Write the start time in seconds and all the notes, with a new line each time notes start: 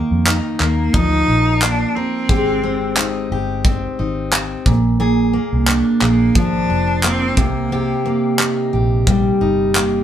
Already playing: D#3 A#3 D#4 A#4
0.11 F2
0.27 D#4, clap
0.60 D#2 A#3 A#4, clap
0.94 D2 F3 D#4, kick
1.28 A#1
1.62 A#3 D4, clap
1.95 C4 A#4
2.29 G#1 G#3 G4, kick
2.63 C4
2.97 D#4, clap
3.32 G1 G4
3.65 C4, kick
3.99 G#1 D#4
4.32 C4, clap
4.66 A#1 A#2, kick
5.00 A#2 G#4
5.33 A#3
5.53 C2
5.68 D4, clap
6.01 A#1 A#3 G#4, clap
6.35 G#1 F3 D4, kick
6.69 F1 D4
7.03 A#3 C4, clap
7.37 C2 C3 A#3, kick
7.72 C3 G4
8.06 A#3
8.39 D#4, clap
8.73 A#1 G4
9.07 G3, kick
9.41 G1 D#4
9.75 A#3, clap